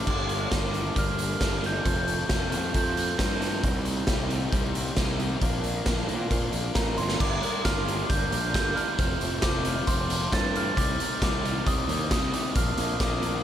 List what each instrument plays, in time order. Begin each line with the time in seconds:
0.07 fingered electric bass G1, overdriven electric guitar G2 D3 G3 A#3 D4, clean electric guitar G3 D4 G4 A#4 D5, glockenspiel D6, kick, crash
0.29 closed hi-hat
0.51 fingered electric bass G1, overdriven electric guitar G2 D3 G3 A#3 D4, clean electric guitar G3 D4 G4 A#4 D5, kick, snare, closed hi-hat
0.73 overdriven electric guitar G2 D3 G3 A#3 D4, clean electric guitar G3 D4 G4 A#4 D5, closed hi-hat
0.95 fingered electric bass G1, overdriven electric guitar G2 D3 G3 A#3 D4, clean electric guitar G3 D4 G4 A#4 D5, glockenspiel F6, kick, closed hi-hat
1.19 closed hi-hat
1.39 fingered electric bass G1, overdriven electric guitar G2 D3 G3 A#3 D4, clean electric guitar G3 D4 G4 A#4 D5, kick, snare, closed hi-hat
1.62 overdriven electric guitar G2 D3 G3 A#3 D4, clean electric guitar G3 D4 G4 A#4 D5, closed hi-hat
1.66 glockenspiel G6
1.83 fingered electric bass F1, overdriven electric guitar F2 C3 F3 A3 C4, clean electric guitar F3 C4 F4 A4 C5, kick, closed hi-hat
2.08 closed hi-hat
2.28 fingered electric bass F1, overdriven electric guitar F2 C3 F3 A3 C4, clean electric guitar F3 C4 F4 A4 C5, kick, snare, closed hi-hat
2.50 overdriven electric guitar F2 C3 F3 A3 C4, fingered electric bass F2, clean electric guitar F3 C4 F4 A4 C5, closed hi-hat
2.72 overdriven electric guitar F2 C3 F3 A3 C4, fingered electric bass F2, clean electric guitar F3 C4 F4 A4 C5, kick, closed hi-hat
2.77 glockenspiel G6
2.97 closed hi-hat
3.17 overdriven electric guitar F2 C3 F3 A3 C4, fingered electric bass G2, clean electric guitar F3 C4 F4 A4 C5, kick, snare, closed hi-hat
3.40 overdriven electric guitar F2 C3 F3 A3 C4, clean electric guitar F3 C4 F4 A4 C5, snare, closed hi-hat
3.62 fingered electric bass C2, clean electric guitar C3 G3 C4 D#4 G4 D5, overdriven electric guitar C3 G3 C4 D#4, kick, closed hi-hat
3.85 closed hi-hat
4.06 fingered electric bass C2, clean electric guitar C3 G3 C4 D#4 G4 D5, overdriven electric guitar C3 G3 C4 D#4, kick, snare, closed hi-hat
4.29 clean electric guitar C3 G3 C4 D#4 G4 D5, overdriven electric guitar C3 G3 C4 D#4, closed hi-hat
4.52 fingered electric bass C2, clean electric guitar C3 G3 C4 D#4 G4 D5, overdriven electric guitar C3 G3 C4 D#4, kick, closed hi-hat
4.75 closed hi-hat
4.96 fingered electric bass C2, overdriven electric guitar C3 G3 C4 D#4, clean electric guitar C3 G3 C4 D#4 G4 D5, kick, snare, closed hi-hat
5.18 clean electric guitar C3 G3 C4 D#4 G4 D5, overdriven electric guitar C3 G3 C4 D#4, closed hi-hat
5.41 fingered electric bass A#1, overdriven electric guitar A#2 D3 F3 A#3 D4, clean electric guitar A#3 C4 F4 A#4 D5, kick, closed hi-hat
5.64 closed hi-hat
5.86 fingered electric bass A#1, overdriven electric guitar A#2 D3 F3 A#3 D4, clean electric guitar A#3 C4 F4 A#4 D5, kick, snare, closed hi-hat
6.08 fingered electric bass A#2, overdriven electric guitar A#2 D3 F3 A#3 D4, clean electric guitar A#3 C4 F4 A#4 D5, closed hi-hat
6.30 overdriven electric guitar A#2 D3 F3 A#3 D4, fingered electric bass A#2, clean electric guitar A#3 C4 F4 A#4 D5, kick, closed hi-hat
6.52 fingered electric bass A#1, closed hi-hat
6.75 fingered electric bass A1, overdriven electric guitar A#2 D3 F3 A#3 D4, clean electric guitar A#3 C4 F4 A#4 D5, glockenspiel A#5, kick, snare, closed hi-hat
6.96 fingered electric bass G1, overdriven electric guitar A#2 D3 F3 A#3 D4, clean electric guitar A#3 C4 F4 A#4 D5, glockenspiel C6, closed hi-hat
7.08 snare
7.19 fingered electric bass G1, overdriven electric guitar G2 D3 G3 A#3 D4, clean electric guitar G3 D4 G4 A#4 D5, glockenspiel D6, kick, crash
7.41 overdriven electric guitar G2 D3 G3 A#3 D4, clean electric guitar G3 D4 G4 A#4 D5, closed hi-hat
7.64 fingered electric bass G1, overdriven electric guitar G2 D3 G3 A#3 D4, clean electric guitar G3 D4 G4 A#4 D5, glockenspiel F6, kick, snare, closed hi-hat
7.86 overdriven electric guitar G2 D3 G3 A#3 D4, clean electric guitar G3 D4 G4 A#4 D5, closed hi-hat
8.09 fingered electric bass G1, overdriven electric guitar G2 D3 G3 A#3 D4, clean electric guitar G3 D4 G4 A#4 D5, glockenspiel G6, kick, closed hi-hat
8.31 fingered electric bass A#1, overdriven electric guitar G2 D3 G3 A#3 D4, clean electric guitar G3 D4 G4 A#4 D5, closed hi-hat
8.52 fingered electric bass G1, overdriven electric guitar G2 D3 G3 A#3 D4, clean electric guitar G3 D4 G4 A#4 D5, glockenspiel G6, kick, snare, closed hi-hat
8.69 glockenspiel G6
8.75 overdriven electric guitar G2 D3 G3 A#3 D4, clean electric guitar G3 D4 G4 A#4 D5, glockenspiel F6, closed hi-hat
8.97 fingered electric bass F1, overdriven electric guitar F2 C3 F3 A3 C4, clean electric guitar F3 C4 F4 A4 C5, kick, closed hi-hat
9.19 fingered electric bass F1, overdriven electric guitar F2 C3 F3 A3 C4, clean electric guitar F3 C4 F4 A4 C5, closed hi-hat
9.41 fingered electric bass F1, overdriven electric guitar F2 C3 F3 A3 C4, clean electric guitar F3 C4 F4 A4 C5, glockenspiel D6, kick, snare, closed hi-hat
9.63 overdriven electric guitar F2 C3 F3 A3 C4, clean electric guitar F3 C4 F4 A4 C5, closed hi-hat
9.86 fingered electric bass F1, overdriven electric guitar F2 C3 F3 A3 C4, clean electric guitar F3 C4 F4 A4 C5, glockenspiel C6, kick, closed hi-hat
10.08 overdriven electric guitar F2 C3 F3 A3 C4, clean electric guitar F3 C4 F4 A4 C5, closed hi-hat
10.30 overdriven electric guitar F2 C3 F3 A3 C4, fingered electric bass G2, clean electric guitar F3 C4 F4 A4, glockenspiel A6, kick, snare, closed hi-hat
10.34 clean electric guitar C5
10.53 overdriven electric guitar F2 C3 F3 A3 C4, clean electric guitar F3 C4 F4 A4 C5, glockenspiel F6, closed hi-hat
10.75 fingered electric bass C2, overdriven electric guitar C3 G3 C4 D#4, clean electric guitar C3 G3 C4 D#4 G4 D5, glockenspiel D6, kick, closed hi-hat
10.97 overdriven electric guitar C3 G3 C4 D#4, clean electric guitar C3 G3 C4 D#4 G4 D5, closed hi-hat
11.20 fingered electric bass C2, overdriven electric guitar C3 G3 C4 D#4, clean electric guitar C3 G3 C4 D#4 G4 D5, kick, snare, closed hi-hat
11.24 glockenspiel D6
11.43 overdriven electric guitar C3 G3 C4 D#4, clean electric guitar C3 G3 C4 D#4 G4 D5, closed hi-hat
11.65 fingered electric bass C2, clean electric guitar C3 G3 C4 D#4 G4 D5, overdriven electric guitar C3 G3 C4 D#4, glockenspiel D#6, kick, closed hi-hat
11.87 fingered electric bass D#2, overdriven electric guitar C3 G3 C4 D#4, clean electric guitar C3 G3 C4 D#4 G4 D5, closed hi-hat
12.09 fingered electric bass C2, clean electric guitar C3 G3 C4 D#4 G4 D5, overdriven electric guitar C3 G3 C4 D#4, glockenspiel D#6, kick, snare, closed hi-hat
12.32 clean electric guitar C3 G3 C4 D#4 G4 D5, overdriven electric guitar C3 G3 C4 D#4, closed hi-hat
12.54 fingered electric bass A#1, overdriven electric guitar A#2 D3 F3 A#3 D4, clean electric guitar A#3 C4 F4 A#4 D5, glockenspiel F6, kick, closed hi-hat
12.77 fingered electric bass A#1, overdriven electric guitar A#2 D3 F3 A#3 D4, clean electric guitar A#3 C4 F4 A#4 D5, closed hi-hat
12.99 fingered electric bass A#1, overdriven electric guitar A#2 D3 F3 A#3 D4, clean electric guitar A#3 C4 F4 A#4 D5, glockenspiel D6, kick, snare, closed hi-hat
13.20 overdriven electric guitar A#2 D3 F3 A#3, clean electric guitar A#3 C4 F4 A#4 D5, closed hi-hat
13.24 overdriven electric guitar D4